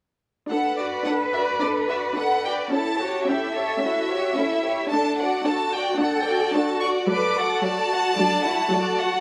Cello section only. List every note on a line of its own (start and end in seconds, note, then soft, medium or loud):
0.50 2.68 B4 soft
2.72 3.00 A4 soft
3.00 3.27 F#4 soft
3.27 3.55 G4 soft
3.54 3.81 A4 soft
3.82 4.36 F#4 soft
4.37 4.91 E4 soft
4.92 5.45 D4 soft
5.47 5.99 F#4 soft
6.00 6.54 A4 soft
6.54 7.07 F#4 soft
7.08 7.35 B4 medium
7.35 7.62 A4 soft
7.62 8.17 F#4 soft
8.17 8.45 D4 soft
8.44 8.72 E4 soft
8.72 9.20 F#4 soft